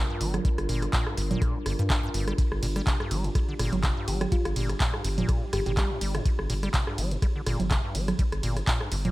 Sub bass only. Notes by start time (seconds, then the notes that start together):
0.21 G1
0.58 G1
0.69 G1
1.17 G1
1.66 G1
1.79 G2
2.14 G1
2.52 G1
2.63 G1
3.11 G1
3.59 G1
3.73 G1
4.08 G1
4.45 G1
4.56 G1
5.05 G1
5.53 G1
5.66 G1
6.01 G1
6.39 G1
6.50 G1
6.98 G1
7.46 G1
7.60 G1
7.95 G1
8.32 G1
8.43 G1
8.92 G1